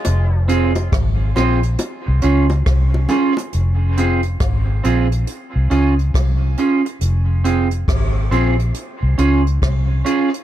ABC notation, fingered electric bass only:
X:1
M:4/4
L:1/16
Q:"Swing 16ths" 1/4=69
K:Fm
V:1 name="Fingered electric bass" clef=bass
F,,,4 A,,,2 B,,,2 z C,, D,,2 C,,2 z2 | F,,,4 A,,,2 B,,,2 z C,, D,,2 C,,2 z2 | F,,,4 A,,,2 B,,,2 z C,, D,,2 C,,2 z2 |]